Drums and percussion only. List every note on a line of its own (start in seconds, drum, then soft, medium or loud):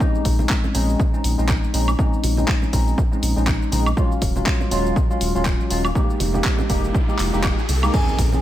0.00 kick loud
0.00 shaker soft
0.15 shaker soft
0.25 kick medium
0.25 open hi-hat loud
0.25 high bongo medium
0.25 shaker medium
0.39 high conga medium
0.39 low conga medium
0.39 shaker soft
0.49 kick loud
0.49 clap loud
0.49 shaker soft
0.64 low conga medium
0.64 shaker soft
0.74 open hi-hat loud
0.74 high bongo soft
0.74 low conga medium
0.74 shaker medium
0.89 high bongo soft
0.89 shaker soft
1.00 kick loud
1.00 shaker soft
1.14 shaker soft
1.24 open hi-hat loud
1.24 shaker medium
1.39 shaker soft
1.49 kick loud
1.49 clap loud
1.49 shaker soft
1.64 shaker soft
1.74 open hi-hat loud
1.74 shaker medium
1.88 high woodblock medium
1.88 shaker soft
1.99 kick loud
1.99 shaker soft
2.13 shaker soft
2.24 open hi-hat loud
2.24 high bongo medium
2.24 high conga medium
2.24 shaker medium
2.37 high conga medium
2.37 low conga medium
2.37 shaker soft
2.48 kick loud
2.48 clap loud
2.48 shaker soft
2.62 low conga medium
2.62 shaker soft
2.73 kick medium
2.73 open hi-hat loud
2.73 low conga medium
2.73 shaker medium
2.87 high bongo soft
2.87 shaker soft
2.98 kick loud
2.98 shaker soft
3.13 shaker soft
3.23 open hi-hat loud
3.23 shaker medium
3.37 shaker soft
3.47 kick loud
3.47 clap loud
3.47 shaker soft
3.62 shaker soft
3.72 open hi-hat loud
3.72 high conga medium
3.72 shaker medium
3.86 high woodblock medium
3.86 shaker soft
3.97 kick loud
3.97 shaker soft
4.12 shaker soft
4.22 kick medium
4.22 open hi-hat loud
4.22 high bongo medium
4.22 shaker medium
4.36 high conga medium
4.36 low conga medium
4.36 shaker soft
4.46 kick loud
4.46 clap loud
4.46 shaker soft
4.61 low conga medium
4.61 shaker soft
4.71 open hi-hat loud
4.71 high bongo soft
4.71 low conga medium
4.71 shaker medium
4.85 high bongo soft
4.85 shaker soft
4.96 kick loud
4.96 shaker soft
5.11 shaker soft
5.21 open hi-hat loud
5.21 shaker medium
5.36 shaker soft
5.45 kick loud
5.45 clap loud
5.45 shaker soft
5.60 shaker soft
5.70 open hi-hat loud
5.70 shaker medium
5.85 high woodblock medium
5.85 shaker soft
5.95 kick loud
5.95 shaker soft
6.10 shaker soft
6.20 open hi-hat loud
6.20 high bongo medium
6.20 high conga medium
6.20 shaker medium
6.34 high conga medium
6.34 low conga medium
6.34 shaker soft
6.44 kick loud
6.44 clap loud
6.44 shaker soft
6.59 low conga medium
6.59 shaker soft
6.69 kick medium
6.69 open hi-hat loud
6.69 high bongo soft
6.69 low conga medium
6.69 shaker medium
6.83 high bongo soft
6.83 shaker soft
6.95 kick loud
6.95 shaker soft
7.09 shaker soft
7.19 clap medium
7.19 open hi-hat loud
7.19 shaker medium
7.34 shaker soft
7.44 kick loud
7.44 clap loud
7.44 high woodblock medium
7.44 shaker soft
7.59 shaker soft
7.69 open hi-hat loud
7.69 high conga medium
7.69 shaker medium
7.83 high woodblock medium
7.83 shaker soft
7.94 kick loud
7.94 crash loud
7.94 shaker soft
8.08 shaker soft
8.19 kick medium
8.19 open hi-hat loud
8.19 high bongo medium
8.19 shaker medium
8.32 high conga medium
8.32 low conga medium
8.32 shaker soft